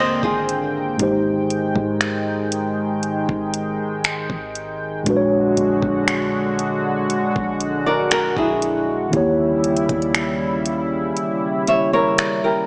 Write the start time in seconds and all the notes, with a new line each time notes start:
Already playing: G#2 D3 G#3 A#3 C4 D4 G4 C5 G5
0.00 D#2 C5 D#5
0.23 G#1 F4 G#4, kick
0.49 closed hi-hat
0.97 G#1 G#2 D#3 G#3 D#4, kick, closed hi-hat
1.02 G4 C5
1.50 closed hi-hat
1.76 G#2, kick
2.01 finger snap, closed hi-hat
2.52 closed hi-hat
3.03 closed hi-hat
3.29 G#1, kick
3.54 closed hi-hat
4.04 finger snap, closed hi-hat
4.30 G#1, kick
4.55 closed hi-hat
5.04 A#1 A#2 D3 G#3 D4 F#4, kick, closed hi-hat
5.08 F#4 B4
5.17 C#5
5.57 A#1, closed hi-hat
5.82 A#1, kick
6.08 finger snap, closed hi-hat
6.59 closed hi-hat
7.10 closed hi-hat
7.36 A#1, kick
7.60 closed hi-hat
7.86 A#4 D5
8.11 F#4 A#4, finger snap, closed hi-hat
8.37 A#1 E4 G#4, kick
8.62 closed hi-hat
9.10 D#2 C#3 D#3 G3 A#3 E4, kick, closed hi-hat
9.15 G4 C#5
9.64 closed hi-hat
9.77 closed hi-hat
9.89 D#2, kick, closed hi-hat
10.02 closed hi-hat
10.15 finger snap, closed hi-hat
10.66 closed hi-hat
11.17 closed hi-hat
11.67 C#5 E5, closed hi-hat
11.93 A#4 C#5
12.18 finger snap, closed hi-hat
12.44 G4 A#4